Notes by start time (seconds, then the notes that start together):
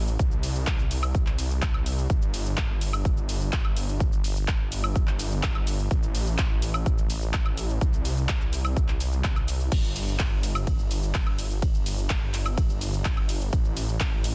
Already playing: A1
0.08 shaker
0.19 C2, kick, shaker
0.32 shaker
0.43 open hi-hat, shaker
0.55 shaker
0.67 kick, clap, shaker
0.79 shaker
0.91 open hi-hat, shaker
1.03 high woodblock, shaker
1.15 kick, shaker
1.26 clap, shaker
1.39 open hi-hat, shaker
1.51 shaker
1.62 kick, clap, high woodblock, shaker
1.74 high woodblock
1.86 open hi-hat, shaker
1.98 shaker
2.10 G1, kick, shaker
2.22 shaker
2.34 open hi-hat, shaker
2.46 shaker
2.57 kick, clap, shaker
2.81 open hi-hat, shaker
2.93 high woodblock, shaker
3.05 kick, shaker
3.17 shaker
3.29 open hi-hat, shaker
3.41 shaker
3.53 kick, clap, high woodblock, shaker
3.65 high woodblock
3.77 open hi-hat, shaker
3.89 shaker
4.00 kick, shaker
4.13 shaker
4.24 open hi-hat, shaker
4.36 shaker
4.48 kick, clap, shaker
4.72 open hi-hat, shaker
4.84 high woodblock, shaker
4.96 kick, shaker
5.07 clap, shaker
5.19 open hi-hat, shaker
5.32 shaker
5.43 kick, clap, high woodblock, shaker
5.55 high woodblock
5.67 open hi-hat, shaker
5.79 shaker
5.91 A1, kick, shaker
6.03 shaker
6.15 open hi-hat, shaker
6.27 shaker
6.38 kick, clap, shaker
6.62 open hi-hat, shaker
6.74 high woodblock, shaker
6.86 kick, shaker
6.98 shaker
7.10 open hi-hat, shaker
7.22 shaker
7.34 kick, clap, high woodblock, shaker
7.46 high woodblock
7.57 open hi-hat, shaker
7.70 shaker
7.81 C2, kick, shaker
7.93 shaker
8.05 open hi-hat, shaker
8.17 shaker
8.29 kick, clap, shaker
8.41 shaker
8.53 open hi-hat, shaker
8.65 high woodblock, shaker
8.77 kick, shaker
8.88 clap, shaker
9.00 open hi-hat, shaker
9.13 shaker
9.24 kick, clap, high woodblock, shaker
9.36 high woodblock, shaker
9.48 open hi-hat, shaker
9.60 shaker
9.72 G1, kick, ride, crash, shaker
9.84 shaker
9.96 open hi-hat, shaker
10.08 shaker
10.19 kick, clap, ride, shaker
10.43 open hi-hat, shaker
10.55 high woodblock, shaker
10.67 kick, ride, shaker
10.79 shaker
10.91 open hi-hat, shaker
11.03 shaker
11.14 kick, clap, ride, high woodblock, shaker
11.27 high woodblock
11.38 open hi-hat, shaker
11.51 shaker
11.62 kick, ride, shaker
11.74 shaker
11.86 open hi-hat, shaker
11.98 shaker
12.10 kick, clap, ride, shaker
12.34 clap, open hi-hat, shaker
12.46 high woodblock, shaker
12.58 kick, ride, shaker
12.70 shaker
12.81 open hi-hat, shaker
12.93 shaker
13.05 kick, clap, ride, high woodblock, shaker
13.17 high woodblock
13.29 open hi-hat, shaker
13.41 shaker
13.53 A1, kick, ride, shaker
13.65 shaker
13.77 open hi-hat, shaker
13.89 shaker
14.00 kick, clap, ride, shaker
14.24 open hi-hat, shaker